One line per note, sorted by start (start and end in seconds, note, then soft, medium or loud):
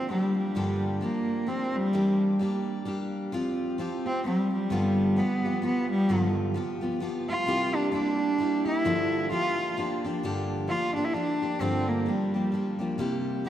0.00 0.10 C4 medium
0.00 0.10 D4 medium
0.00 0.11 G4 medium
0.09 0.55 F3 medium
0.09 0.36 G3 medium
0.09 0.56 A#3 medium
0.09 0.56 D4 medium
0.09 0.56 G4 medium
0.37 1.01 G3 medium
0.55 1.02 G2 medium
0.55 1.02 D3 medium
0.55 1.00 F3 medium
0.55 1.02 A#3 medium
0.55 1.02 D4 medium
0.55 1.03 G4 medium
1.01 1.45 F3 medium
1.01 1.47 A#3 medium
1.01 1.49 A#3 medium
1.01 1.48 D4 medium
1.01 1.49 G4 medium
1.47 1.93 F3 medium
1.47 1.93 A#3 medium
1.47 1.77 C4 medium
1.47 1.94 D4 medium
1.47 1.95 G4 medium
1.76 2.21 G3 medium
1.93 2.40 E3 medium
1.93 2.39 G3 medium
1.93 2.39 A#3 medium
1.93 2.40 D4 medium
1.93 2.42 G4 medium
2.39 2.85 G3 medium
2.39 2.85 A#3 medium
2.39 2.86 D4 medium
2.39 2.88 G4 medium
2.85 3.32 G3 medium
2.85 3.33 A#3 medium
2.85 3.33 D4 medium
2.85 3.34 G4 medium
3.32 3.78 F3 medium
3.32 3.78 C4 medium
3.32 3.80 F4 medium
3.32 3.80 G4 medium
3.78 4.06 F3 medium
3.78 4.06 C4 medium
3.78 4.05 F4 medium
3.78 4.04 G4 medium
4.06 4.25 C4 medium
4.06 4.24 C4 soft
4.06 4.25 F4 soft
4.06 4.25 G4 soft
4.24 4.71 F3 soft
4.24 4.52 G3 medium
4.24 4.71 C4 medium
4.24 4.72 F4 medium
4.24 4.72 G4 medium
4.53 5.19 G3 medium
4.70 5.17 G2 medium
4.70 5.17 D3 medium
4.70 5.15 F3 medium
4.70 5.17 B3 medium
4.70 5.18 F4 medium
4.70 5.19 G4 medium
5.16 5.44 F3 medium
5.16 5.45 B3 medium
5.16 5.62 B3 medium
5.16 5.44 F4 medium
5.16 5.43 G4 medium
5.45 5.61 F3 soft
5.45 5.62 B3 soft
5.45 5.62 F4 soft
5.45 5.63 G4 soft
5.62 6.09 F3 medium
5.62 6.09 B3 medium
5.62 5.90 B3 medium
5.62 6.09 F4 medium
5.62 6.10 G4 medium
5.90 6.35 G3 loud
6.09 6.55 G2 medium
6.09 6.55 D3 medium
6.09 6.53 F3 medium
6.09 6.54 B3 medium
6.09 6.55 F4 medium
6.09 6.57 G4 medium
6.54 6.82 F3 medium
6.54 6.82 B3 medium
6.54 6.81 F4 medium
6.54 6.80 G4 medium
6.81 6.99 F3 soft
6.81 7.00 B3 soft
6.81 7.01 F4 soft
6.81 7.01 G4 medium
7.00 7.47 F3 medium
7.00 7.47 B3 medium
7.00 7.48 F4 medium
7.00 7.48 G4 medium
7.29 7.77 F4 loud
7.46 7.93 C3 medium
7.46 7.91 G3 medium
7.46 7.92 A#3 medium
7.46 7.93 E4 medium
7.46 7.94 G4 medium
7.75 7.92 D4 medium
7.92 8.38 G3 medium
7.92 8.39 A#3 medium
7.92 8.64 D4 medium
7.92 8.39 E4 medium
7.92 8.41 G4 medium
8.38 8.66 G3 medium
8.38 8.66 A#3 medium
8.38 8.66 E4 medium
8.38 8.64 G4 medium
8.65 8.85 A#3 soft
8.65 9.29 E4 medium
8.65 8.86 E4 soft
8.65 8.85 G4 medium
8.84 9.31 G2 medium
8.84 9.31 D3 medium
8.84 9.29 F3 loud
8.84 9.30 A#3 medium
8.84 9.32 D4 medium
8.84 9.32 G4 medium
9.30 9.76 F3 medium
9.30 9.76 A#3 medium
9.30 9.77 D4 medium
9.30 9.76 F4 loud
9.30 9.78 G4 medium
9.77 10.04 F3 medium
9.77 10.04 A#3 medium
9.77 10.04 D4 medium
9.77 10.03 G4 medium
10.04 10.23 F3 soft
10.04 10.24 A#3 medium
10.04 10.23 D4 medium
10.04 10.23 G4 medium
10.23 10.69 G2 medium
10.23 10.69 D3 medium
10.23 10.66 F3 medium
10.23 10.69 A#3 medium
10.23 10.69 D4 medium
10.23 10.70 G4 medium
10.67 10.95 F3 medium
10.67 10.96 A#3 medium
10.67 10.96 D4 medium
10.67 10.94 F4 medium
10.67 10.95 G4 medium
10.95 11.13 F3 soft
10.95 11.14 A#3 soft
10.95 11.06 D4 medium
10.95 11.15 D4 soft
10.95 11.15 G4 soft
11.04 11.15 E4 medium
11.14 11.42 F3 medium
11.14 11.42 A#3 soft
11.14 11.63 D4 medium
11.14 11.42 D4 medium
11.14 11.41 G4 medium
11.42 11.60 F3 soft
11.42 11.60 A#3 soft
11.42 11.60 D4 soft
11.42 11.61 G4 soft
11.60 12.06 G2 medium
11.60 12.07 D3 medium
11.60 12.05 F3 medium
11.60 12.06 A#3 medium
11.60 11.90 C4 medium
11.60 12.07 D4 medium
11.60 12.08 G4 medium
11.88 12.10 A#3 medium
12.06 12.33 F3 medium
12.06 12.80 G3 medium
12.06 12.34 A#3 medium
12.06 12.33 D4 medium
12.06 12.33 G4 medium
12.34 12.51 F3 soft
12.34 12.52 A#3 soft
12.34 12.53 D4 soft
12.34 12.53 G4 soft
12.52 12.79 F3 soft
12.52 12.80 A#3 medium
12.52 12.79 D4 medium
12.52 12.77 G4 medium
12.79 12.98 F3 soft
12.79 12.98 A#3 soft
12.79 12.99 D4 medium
12.79 12.98 G4 medium
12.98 13.44 C3 medium
12.98 13.44 G3 medium
12.98 13.44 A#3 medium
12.98 13.45 E4 medium
12.98 13.47 G4 medium
13.44 13.49 G3 medium
13.44 13.49 A#3 medium